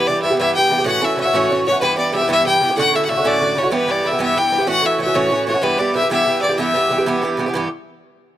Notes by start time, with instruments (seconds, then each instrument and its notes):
0.07 bouzouki G2 E3 B3 G4, fiddle D5
0.22 bouzouki G2 E3 B3 G4, fiddle E5
0.30 bouzouki E3 B3 G4
0.38 bouzouki G2 E3 B3 G4, fiddle E5
0.55 bouzouki G2 E3 B3 G4, fiddle G5
0.70 bouzouki G2 E3 B3 G4
0.78 bouzouki E3 B3 G4
0.84 bouzouki A2 E3 C#4 F#4, fiddle F#5
1.00 bouzouki A2 E3 C#4 F#4, fiddle E5
1.16 bouzouki A2 E3 C#4 F#4
1.20 fiddle E5
1.25 bouzouki E3 C#4 F#4
1.33 bouzouki A2 E3 C#4 F#4, fiddle C#5
1.49 bouzouki A2 E3 C#4 F#4
1.66 bouzouki A2 E3 C#4 F#4, fiddle C#5
1.72 bouzouki E3 C#4 F#4
1.81 bouzouki G2 E3 B3 G4, fiddle B4
1.96 bouzouki G2 E3 B3 G4, fiddle D5
2.12 bouzouki G2 E3 B3 G4, fiddle E5
2.21 bouzouki E3 B3 G4
2.28 bouzouki G2 E3 B3 G4
2.32 fiddle E5
2.45 bouzouki G2 E3 B3 G4, fiddle G5
2.60 bouzouki G2 E3 B3 G4
2.70 bouzouki E3 B3 G4
2.77 bouzouki A2 D3 C#4 F#4, fiddle F#5
2.93 bouzouki A2 D3 C#4 F#4, fiddle E5
3.05 bouzouki A2, fiddle F#5
3.09 bouzouki D3 C#4 F#4, fiddle E5
3.17 bouzouki D3 C#4 F#4
3.24 bouzouki A2 D3 C#4 F#4, fiddle D5
3.40 bouzouki A2 D3 C#4 F#4
3.55 bouzouki A2 D3 C#4 F#4, fiddle C#5
3.63 bouzouki D3 C#4 F#4
3.67 bouzouki G2 E3, fiddle C#5
3.72 bouzouki B3 G4
3.76 fiddle B4
3.87 bouzouki G2 E3 B3 G4
3.91 fiddle D5
4.03 bouzouki G2 E3 B3 G4, fiddle E5
4.11 bouzouki E3 B3 G4
4.19 bouzouki G2 E3 B3 G4, fiddle E5
4.36 bouzouki G2 E3 B3 G4, fiddle G5
4.51 bouzouki G2 E3 B3 G4
4.58 bouzouki E3 B3 G4
4.67 bouzouki A2 E3 C#4 F#4, fiddle F#5
4.82 bouzouki A2 E3 C#4 F#4
4.86 fiddle E5
4.98 bouzouki A2 E3 C#4 F#4, fiddle E5
5.06 bouzouki E3 C#4 F#4
5.14 bouzouki A2 E3 C#4 F#4, fiddle C#5
5.30 bouzouki A2 E3 C#4 F#4
5.47 bouzouki A2 E3 C#4 F#4, fiddle C#5
5.54 bouzouki E3 C#4 F#4
5.62 bouzouki G2 E3 B3 G4, fiddle B4
5.77 bouzouki G2 E3 B3 G4, fiddle D5
5.94 bouzouki G2 E3 B3 G4, fiddle E5
6.02 bouzouki E3 B3 G4
6.10 bouzouki G2 E3 B3 G4, fiddle E5
6.25 bouzouki G2 E3 B3 G4
6.42 bouzouki G2 E3 B3 G4, fiddle D5
6.49 bouzouki E3 B3 G4
6.58 bouzouki G2 E3 B3 G4, fiddle E5
6.74 bouzouki G2 E3 B3 G4
6.89 bouzouki G2 E3 B3 G4
6.98 bouzouki E3 B3 G4
7.06 bouzouki G2 E3 B3 G4
7.22 bouzouki G2 E3 B3 G4
7.37 bouzouki G2 E3 B3 G4
7.46 bouzouki E3 B3 G4
7.54 bouzouki G2 E3 B3 G4